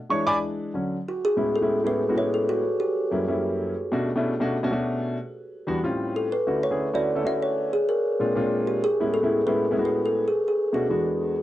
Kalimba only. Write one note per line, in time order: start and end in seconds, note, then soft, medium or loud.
1.09 1.24 F#4 medium
1.25 1.56 G#4 medium
1.55 1.87 A4 medium
1.87 2.16 B4 medium
2.18 2.34 C#5 medium
2.34 2.50 A4 medium
2.49 2.82 F#4 medium
2.80 3.72 G4 medium
6.16 6.32 A4 medium
6.32 6.64 B4 medium
6.63 6.92 C#5 medium
6.95 7.24 D5 medium
7.27 7.34 E5 medium
7.42 7.71 C#5 medium
7.73 7.88 G#4 medium
7.89 8.70 A#4 medium
8.67 8.83 G4 medium
8.84 9.17 G#4 medium
9.14 9.44 A4 medium
9.47 9.82 B4 medium
9.85 10.07 B4 medium
10.06 10.27 A4 medium
10.28 10.47 G#4 medium
10.48 10.68 G#4 medium
10.74 11.34 F#4 medium